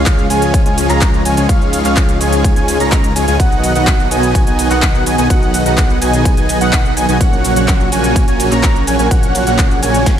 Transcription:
Already playing: C#2 C#3 F3 G#3 C#4 F4 G#4 C#5 F5
0.06 kick, clap, closed hi-hat, ride, shaker
0.19 shaker
0.30 C#2 G#3 C#4 F4 C#5 G#5, open hi-hat, ride, shaker
0.42 closed hi-hat, shaker
0.54 kick, closed hi-hat, ride, shaker
0.66 C#2 G#3 C#4 F4 C#5 G#5, closed hi-hat, shaker
0.78 open hi-hat, ride, shaker
0.89 C#2 G#3 C#4 F4 C#5 A#5, clap, closed hi-hat, shaker
1.01 kick, clap, closed hi-hat, ride, shaker
1.14 shaker
1.25 C#2 G#3 C#4 F4 C#5 G#5, open hi-hat, ride, shaker
1.37 C#2 G#3 C#4 F4 C#5 G#5, closed hi-hat, shaker
1.49 C#2 G#3 C#4 D#4 F4 C#5 F5, kick, closed hi-hat, ride, shaker
1.62 shaker
1.73 open hi-hat, ride, shaker
1.85 C#2 G#3 C#4 F4 C#5 F5, clap, closed hi-hat, shaker
1.97 kick, clap, closed hi-hat, ride, shaker
2.09 closed hi-hat, shaker
2.21 C#2 G#3 C#4 F4 C#5 G#5, open hi-hat, ride, shaker
2.33 closed hi-hat, shaker
2.44 kick, closed hi-hat, ride, shaker
2.56 C#2 G#3 C#4 F4 C#5 G#5, closed hi-hat, shaker
2.68 open hi-hat, ride, shaker
2.80 C#2 G#3 C#4 F4 C#5 A#5, closed hi-hat, shaker
2.92 kick, clap, closed hi-hat, ride, shaker
3.04 closed hi-hat, shaker
3.16 C#2 G#3 C#4 F4 C#5 G#5, open hi-hat, ride, shaker
3.28 C#2 G#3 C#4 F4 C#5 G#5, closed hi-hat, shaker
3.40 B1 B2 D#3 F#3 B3 D#4 F#4 D#5 F#5, kick, closed hi-hat, ride, shaker
3.52 shaker
3.64 open hi-hat, ride, shaker
3.75 B1 B3 D#4 F#4 D#5 F#5, closed hi-hat, shaker
3.87 kick, clap, closed hi-hat, ride, shaker
4.00 shaker
4.11 B1 B3 D#4 F#4 D#5 G#5, open hi-hat, ride, shaker
4.23 closed hi-hat, shaker
4.35 kick, closed hi-hat, ride, shaker
4.47 B1 B3 D#4 F#4 D#5 G#5, closed hi-hat, shaker
4.59 open hi-hat, ride, shaker
4.71 B1 B3 D#4 F#4 D#5 F#5, clap, closed hi-hat, shaker
4.82 kick, clap, closed hi-hat, ride, shaker
4.95 shaker
5.06 B1 B3 D#4 F#4 D#5 G#5, open hi-hat, ride, shaker
5.18 B1 B3 D#4 F#4 D#5 G#5, closed hi-hat, shaker
5.30 B1 B3 D#4 F#4 G#4 D#5 F#5, kick, closed hi-hat, ride, shaker
5.43 shaker
5.54 open hi-hat, ride, shaker
5.66 B1 B3 D#4 F#4 D#5 F#5, closed hi-hat, shaker
5.78 kick, clap, closed hi-hat, ride, shaker
5.90 shaker
6.02 B1 B3 D#4 F#4 D#5 G#5, open hi-hat, ride, shaker
6.14 closed hi-hat, shaker
6.25 kick, closed hi-hat, ride, shaker
6.37 B1 B3 D#4 F#4 D#5 G#5, closed hi-hat, shaker
6.49 open hi-hat, ride, shaker
6.61 B1 B3 D#4 F#4 D#5 F#5, closed hi-hat, shaker
6.73 kick, clap, closed hi-hat, ride, shaker
6.85 shaker
6.97 B1 B3 D#4 F#4 D#5 G#5, open hi-hat, ride, shaker
7.09 B1 B3 D#4 F#4 D#5 G#5, closed hi-hat, shaker
7.21 A#1 A#2 C#3 A#3 C#4 F#4 C#5 F#5, kick, closed hi-hat, ride, shaker
7.33 shaker
7.44 open hi-hat, ride, shaker
7.56 A#1 A#3 C#4 F#4 C#5 F#5, closed hi-hat, shaker
7.68 kick, clap, closed hi-hat, ride, shaker
7.81 shaker
7.92 A#1 A#3 C#4 F#4 C#5 G#5, open hi-hat, ride, shaker
8.04 closed hi-hat, shaker
8.16 kick, closed hi-hat, ride, shaker
8.28 A#1 A#3 C#4 F#4 C#5 G#5, closed hi-hat, shaker
8.40 open hi-hat, ride, shaker
8.51 A#1 A#3 C#4 F#4 C#5 A#5, clap, closed hi-hat, shaker
8.63 kick, clap, closed hi-hat, ride, shaker
8.76 shaker
8.87 A#1 A#3 C#4 F#4 C#5 G#5, open hi-hat, ride, shaker
8.99 A#1 A#3 C#4 F#4 C#5 G#5, closed hi-hat, shaker
9.11 A#1 A#3 C#4 C#5 F#5, kick, closed hi-hat, ride, shaker
9.23 closed hi-hat, shaker
9.35 open hi-hat, ride, shaker
9.47 A#1 A#3 C#4 F#4 C#5 F#5, closed hi-hat, shaker
9.59 kick, clap, closed hi-hat, ride, shaker
9.71 shaker
9.82 A#1 A#3 C#4 F#4 C#5 G#5, open hi-hat, ride, shaker
9.94 closed hi-hat, shaker
10.06 kick, snare, closed hi-hat, ride, reverse cymbal, shaker

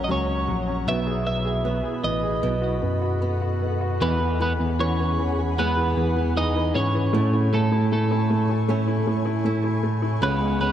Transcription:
Already playing: F#2 F#3 A#3 C#4 C#5 F#5 A#5 C#6
0.04 D#5
0.09 C#2 F#3 C#4 C#5
0.28 C#4
0.48 A#1 F#3
0.68 C#4
0.87 B1 B2 B3 E4 G#4 B4 E5 B5
1.06 G#4
1.26 B3 E5
1.45 G#4
1.64 B3
1.83 G#4
2.03 A1 B3 D#5
2.23 G#4
2.42 B1 B2 B3 A4 D#5 F#5
2.62 F#4
2.82 F#2 B3
3.02 F#4
3.21 B3
3.42 F#4
3.62 B3
3.81 F#4
4.00 E2 E3 B3 G#4 B4 F#5 G#5 B5
4.20 E3
4.40 E3 B3 B4
4.59 E2 E3
4.79 E3 C#4 C#5
4.99 E3
5.19 E3
5.38 E3
5.58 G#3 B3 E4 B4
5.77 E3
5.97 E2 E3
6.16 E3
6.36 E3 D#4 D#5
6.56 E3
6.75 G#2 E3 C#4 C#5
6.95 E3
7.13 A2 A3 A4 C#5 C#6
7.34 E4
7.53 A3 C#4 A4
7.72 A2 E4
7.92 A3 A4
8.11 E4
8.30 A3
8.49 E4
8.68 A3 C#4 E4
8.88 E4
9.07 A2 A3
9.26 E4
9.45 A3 E4
9.64 E4
9.83 A3
10.02 E4
10.21 C#2 C#3 B3 G#4 B4 C#5
10.41 G#3
10.60 C#3 B3 C#4 B4

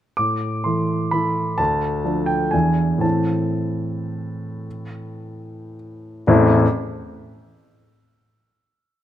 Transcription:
0.17 A2 D6
0.64 E3 E4 A4 C6
1.11 E3 E4 A4 B5
1.58 D2 A5
2.04 F3 D4 A4
2.26 G5
2.51 E2 E3 D4 E4 G#5
2.98 A2 E3 C4 E4 A5
6.27 A1 E2 E3 A3 C4 E4

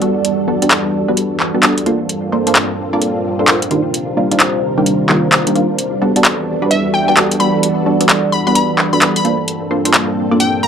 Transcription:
Already playing: E2 G3 B3 D4 E4 F#4 A4 D5 F#5 A5
0.02 G3 B3 D4 F#4 A4, closed hi-hat
0.25 closed hi-hat
0.48 G3 B3 D4 F#4 A4
0.62 G3 B3 D4 F#4 A4, closed hi-hat
0.71 clap, closed hi-hat
1.08 G3 B3 D4 F#4 B4
1.17 closed hi-hat
1.40 clap
1.54 G3 B3 D4 F#4 A4
1.63 G3 B3 D4 F#4 A4, clap, closed hi-hat
1.78 closed hi-hat
1.86 G2 A#3 C4 D4 F4 A4 C5, closed hi-hat
2.09 A#3 G5, closed hi-hat
2.22 C5
2.32 A#3 D4 F4 A4 C5
2.47 A#3 D4 F4 A4 C5, closed hi-hat
2.55 clap, closed hi-hat
2.93 A#3 D4 F4 A4 D5
3.02 closed hi-hat
3.39 A#3 D4 F4 A4 C5
3.48 A#3 D4 F4 A4 C5, clap, closed hi-hat
3.62 closed hi-hat
3.71 C3 D#3 G3 A#3 D4 F4 A#4, closed hi-hat
3.90 A#5, closed hi-hat
3.96 D5
4.17 D#3 G3 A#3 D4 F4
4.31 D#3 G3 A#3 D4 F4 F5, closed hi-hat
4.40 clap, closed hi-hat
4.78 D#3 G3 A#3 D4 G4
4.86 closed hi-hat
5.09 D#3 G3 A#3 D4 F4, clap
5.32 clap, closed hi-hat
5.47 D#3 G3 A#3 D4 G4, closed hi-hat
5.55 D#3 G3 A#3 D4 F4, closed hi-hat
5.78 E2 B3 E4 F#4 A4, closed hi-hat
5.93 G3
6.02 G3 B3 D4 F#4 A4
6.16 G3 B3 D4 F#4 A4, closed hi-hat
6.23 F#5, clap, closed hi-hat
6.52 A5
6.62 G3 B3 D4 F#4 B4
6.71 E5, closed hi-hat
6.94 G5
7.08 G3 B3 D4 F#4 A4 G5
7.17 G3 B3 D4 F#4 A4, clap, closed hi-hat
7.31 closed hi-hat
7.40 G3 B3 D4 F#4 A4 B5, closed hi-hat
7.63 closed hi-hat
7.86 G3 B3 D4 F#4 A4
8.01 G3 B3 D4 F#4 A4, closed hi-hat
8.09 clap, closed hi-hat
8.32 B5
8.47 G3 B3 D4 F#4 B4 B5
8.55 B5, closed hi-hat
8.79 clap
8.93 G3 B3 D4 F#4 A4 B5
9.02 G3 B3 D4 F#4 A4, clap, closed hi-hat
9.16 B5, closed hi-hat
9.25 G2 A#3 C4 D4 F4 A4 C5, closed hi-hat
9.31 A#3
9.48 closed hi-hat
9.56 C5
9.71 A#3 D4 F4 A4 C5
9.85 A#3 D4 F4 A4 C5, closed hi-hat
9.94 G5, clap, closed hi-hat
10.31 A#3 D4 F4 A4 D5
10.40 G5, closed hi-hat
10.63 A#5

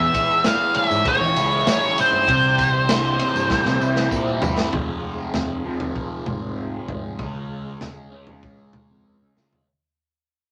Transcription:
Already playing: E2 E3 G#3 C#4 G#4 E5
0.14 kick, ride, tambourine
0.30 tambourine
0.44 E3 F5, snare, ride, tambourine
0.61 tambourine
0.74 C#4 E5, ride
0.91 G#2, tambourine
1.05 G#3 C#5, kick, ride, tambourine
1.21 E3, tambourine
1.36 C#2 E4, ride, tambourine
1.67 C#4 C#5, snare, ride, tambourine
1.83 snare
1.97 E4 C5, ride, tambourine
2.12 G2
2.27 C2 C3 G3 C4 G4, kick, ride, tambourine
2.44 tambourine
2.58 kick, ride, tambourine
2.89 E3, snare, ride, tambourine
3.05 tambourine
3.19 C4, ride, tambourine
3.35 G2, tambourine
3.50 G3, kick, snare, tambourine
3.65 C3, snare
3.81 C3 E4, tambourine
3.96 snare, tambourine
4.11 A#2 C4, kick, tambourine
4.27 tambourine
4.42 G2 E4, floor tom, tambourine
4.58 snare, tambourine
4.73 F2 C3 F3 G#3 C4 F4 G#4, kick, floor tom
5.34 F2, snare, floor tom
5.65 F2 C3 F3
5.80 floor tom
5.96 kick
6.26 G#2, floor tom, mid tom
6.88 G#2, kick, floor tom
7.19 C#2 C#3 G#3 C#4, kick, floor tom
7.81 C#2, snare, floor tom
8.11 C#3 G#3 C#4
8.27 floor tom
8.43 kick
8.73 floor tom, mid tom
8.90 F2
9.22 C#3
9.37 C#3, snare
9.53 floor tom

